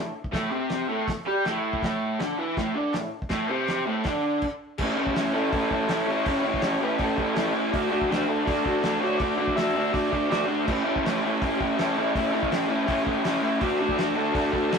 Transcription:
Already playing: overdriven electric guitar A2
0.24 kick
0.32 overdriven electric guitar A2 A3, kick, snare, open hi-hat
0.50 overdriven electric guitar C3 C4
0.69 snare, open hi-hat
0.88 overdriven electric guitar A2 A3
1.08 muted overdriven electric guitar stroke, kick, snare, open hi-hat
1.26 overdriven electric guitar G3 G4
1.45 overdriven electric guitar A2 A3, snare, open hi-hat
1.73 kick
1.82 overdriven electric guitar A2 A3, kick, snare, open hi-hat
2.20 overdriven electric guitar D3 D4, snare, open hi-hat
2.39 overdriven electric guitar E3 E4
2.57 overdriven electric guitar A2 A3, kick, snare, open hi-hat
2.75 overdriven electric guitar D3 D4
2.93 overdriven electric guitar A2, snare, open hi-hat
3.22 kick
3.29 overdriven electric guitar A2 A3, kick, snare, open hi-hat
3.49 overdriven electric guitar C3 C4
3.68 snare, open hi-hat
3.86 overdriven electric guitar A2 A3
4.04 overdriven electric guitar D3 D4, kick, snare, open hi-hat
4.42 kick, crash
4.78 overdriven electric guitar A2 E3 A3 C#4 E4, kick, crash
4.95 overdriven electric guitar A2 E3 A3 C#4 E4
5.07 kick
5.14 overdriven electric guitar A2 E3 A3 C#4 E4, snare, open hi-hat
5.32 overdriven electric guitar A2 E3 A3 C#4 E4, transistor combo organ A4
5.51 overdriven electric guitar A2 E3 A3 C#4 E4, kick, open hi-hat
5.70 overdriven electric guitar A2 E3 A3 C#4 E4, kick
5.88 overdriven electric guitar A2 E3 A3 C#4 E4, snare, open hi-hat
6.06 overdriven electric guitar A2 E3 A3 C#4 E4, transistor combo organ C#5
6.24 overdriven electric guitar A2 E3 A3 C#4 E4, kick, open hi-hat
6.39 overdriven electric guitar A2, transistor combo organ C#5
6.43 overdriven electric guitar E3 A3 C#4 E4
6.54 kick
6.60 overdriven electric guitar A2 E3 A3 C#4 E4, snare, open hi-hat
6.80 overdriven electric guitar A2 E3 A3 C#4 E4, transistor combo organ B4
6.98 overdriven electric guitar A2 E3 A3 C#4 E4, kick, open hi-hat
7.03 transistor combo organ A4
7.16 overdriven electric guitar A2 E3 A3 C#4 E4, kick
7.34 overdriven electric guitar A2 E3 A3 C#4 E4, snare, open hi-hat
7.51 overdriven electric guitar A2 E3 A3 C#4 E4
7.72 overdriven electric guitar D3 A3 D4 F#4, kick, open hi-hat
7.89 overdriven electric guitar D3 A3 D4 F#4
8.01 kick
8.08 overdriven electric guitar D3 A3 D4 F#4, open hi-hat
8.12 snare
8.27 overdriven electric guitar D3 A3 D4 F#4, transistor combo organ A4
8.45 overdriven electric guitar D3 A3 D4 F#4, kick, open hi-hat
8.64 overdriven electric guitar D3 A3 D4 F#4, kick
8.83 overdriven electric guitar D3 A3 D4 F#4, snare, open hi-hat
9.00 overdriven electric guitar D3 A3 D4 F#4, transistor combo organ C#5
9.17 overdriven electric guitar D3 A3, transistor combo organ D5, kick, open hi-hat
9.21 overdriven electric guitar D4 F#4
9.37 overdriven electric guitar D3 A3 D4 F#4
9.47 kick
9.55 overdriven electric guitar D3 A3 D4 F#4, transistor combo organ E5, snare, open hi-hat
9.74 overdriven electric guitar D3 A3 D4 F#4
9.92 overdriven electric guitar D3 A3 D4 F#4, transistor combo organ D5, kick, open hi-hat
10.11 overdriven electric guitar D3 A3 D4 F#4, kick
10.30 overdriven electric guitar D3 A3 D4 F#4, snare, open hi-hat
10.46 overdriven electric guitar D3 A3 D4 F#4
10.65 overdriven electric guitar A2 E3 A3 C#4 E4, kick, crash
10.83 overdriven electric guitar A2 E3 A3 C#4 E4
10.96 kick
11.03 overdriven electric guitar A2 E3 A3 C#4 E4, snare, open hi-hat
11.23 overdriven electric guitar A2 E3 A3 C#4 E4
11.41 overdriven electric guitar A2 E3 A3 C#4 E4, kick, open hi-hat
11.59 overdriven electric guitar A2 E3 A3 C#4 E4, kick
11.78 overdriven electric guitar A2 E3 A3 C#4 E4, snare, open hi-hat
11.96 overdriven electric guitar A2 E3 A3 C#4
12.00 overdriven electric guitar E4
12.13 overdriven electric guitar A2 E3 A3 C#4 E4, kick, open hi-hat
12.32 overdriven electric guitar A2 E3 A3 C#4 E4
12.43 kick
12.49 overdriven electric guitar A2 E3 A3 C#4 E4, snare, open hi-hat
12.67 overdriven electric guitar A2 E3 A3 C#4 E4
12.85 overdriven electric guitar A2 E3 A3 C#4 E4, kick, open hi-hat
13.04 overdriven electric guitar A2 E3 A3 C#4 E4, kick
13.23 overdriven electric guitar A2 E3 A3 C#4 E4, snare, open hi-hat
13.41 overdriven electric guitar A2 E3 A3 C#4 E4
13.60 overdriven electric guitar D3 A3 D4 F#4, kick, open hi-hat
13.79 overdriven electric guitar D3 A3 D4 F#4
13.89 kick
13.97 overdriven electric guitar D3 A3 D4 F#4, snare, open hi-hat
14.15 overdriven electric guitar D3 A3 D4 F#4, transistor combo organ A4
14.33 overdriven electric guitar D3 A3 D4 F#4, kick, open hi-hat
14.51 overdriven electric guitar D3 A3 D4 F#4, kick
14.69 overdriven electric guitar D3 A3 D4 F#4, open hi-hat
14.73 snare

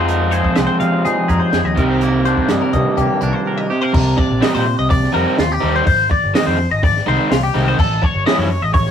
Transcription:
Already playing: fingered electric bass F2, overdriven electric guitar F3 G#3 C4 F4, clean electric guitar F3 C4 G#4
0.07 clean electric guitar D#4 A#4, closed hi-hat
0.31 clean electric guitar G#4 C5, closed hi-hat
0.44 kick
0.55 fingered electric bass C2, clean electric guitar C4 D#5, snare, closed hi-hat
0.67 clean electric guitar C5
0.80 clean electric guitar C3 F5, fingered electric bass F3, closed hi-hat
1.05 fingered electric bass F3, clean electric guitar D#4 G#4, closed hi-hat
1.28 fingered electric bass F2, clean electric guitar G#4 A#4, kick, closed hi-hat
1.40 clean electric guitar C5
1.53 fingered electric bass F2, clean electric guitar G#4, snare, closed hi-hat
1.65 fingered electric bass D#2, clean electric guitar D#5
1.75 fingered electric bass C2, overdriven electric guitar C3 D#3 G3 C4, clean electric guitar C3 A#4, kick, closed hi-hat
1.79 overdriven electric guitar G4
1.89 clean electric guitar C5
2.00 clean electric guitar A#3 A#4, closed hi-hat
2.25 clean electric guitar D4 C5, closed hi-hat
2.37 kick
2.49 fingered electric bass G2, clean electric guitar G3 D#5, snare, closed hi-hat
2.61 clean electric guitar A#4
2.73 clean electric guitar G2 D#5, fingered electric bass C3, kick, closed hi-hat
2.97 fingered electric bass C3, clean electric guitar A#3 G4, kick, closed hi-hat
3.21 fingered electric bass C2, clean electric guitar D4 A#4, closed hi-hat
3.33 clean electric guitar C5
3.47 clean electric guitar A#4
3.58 clean electric guitar D#5
3.70 clean electric guitar C3 G4
3.82 clean electric guitar A#4 C5
3.93 fingered electric bass C2, clean electric guitar A#4, muted overdriven electric guitar stroke, kick, crash
4.17 clean electric guitar D5, muted overdriven electric guitar stroke, kick
4.30 fingered electric bass A#1
4.41 overdriven electric guitar C3 G3 C4 D#4, clean electric guitar D#5, snare, open hi-hat
4.55 fingered electric bass A#2, clean electric guitar C5
4.65 muted overdriven electric guitar stroke
4.79 fingered electric bass C2, clean electric guitar D#5
4.89 clean electric guitar D5, muted overdriven electric guitar stroke, kick, open hi-hat
5.04 snare
5.12 fingered electric bass F2, overdriven electric guitar C3 G3 C4 D#4, clean electric guitar A#4
5.37 fingered electric bass D#2, clean electric guitar F4, muted overdriven electric guitar stroke, snare, open hi-hat
5.52 clean electric guitar G4
5.61 fingered electric bass D#2, overdriven electric guitar C3 G3 C4 D#4
5.76 clean electric guitar C5
5.86 fingered electric bass G#1, clean electric guitar C5, muted overdriven electric guitar stroke, kick, open hi-hat
6.10 clean electric guitar D5, muted overdriven electric guitar stroke, kick
6.23 fingered electric bass G1
6.34 overdriven electric guitar D#3 G#3 C4 D#4, clean electric guitar D#5, snare, open hi-hat
6.47 fingered electric bass F2, clean electric guitar C5
6.58 muted overdriven electric guitar stroke
6.71 fingered electric bass G#1, clean electric guitar D#5
6.83 clean electric guitar D5, muted overdriven electric guitar stroke, kick, open hi-hat
6.97 snare
7.06 fingered electric bass C2, overdriven electric guitar D#3 G#3 C4 D#4, clean electric guitar C5
7.30 fingered electric bass C2, clean electric guitar F4, muted overdriven electric guitar stroke, snare, open hi-hat
7.43 clean electric guitar G4
7.54 fingered electric bass C2, overdriven electric guitar D#3 G#3 C4 D#4
7.68 clean electric guitar C5
7.79 fingered electric bass A1, clean electric guitar A4, muted overdriven electric guitar stroke, kick, crash
8.02 clean electric guitar C#5, muted overdriven electric guitar stroke, kick
8.14 fingered electric bass G1
8.26 overdriven electric guitar E3 G3 C#4 E4, clean electric guitar D#5, snare, open hi-hat
8.38 fingered electric bass F#2, clean electric guitar C#5
8.50 muted overdriven electric guitar stroke
8.61 fingered electric bass A1, clean electric guitar D#5
8.74 clean electric guitar C#5, muted overdriven electric guitar stroke, kick, open hi-hat
8.86 snare

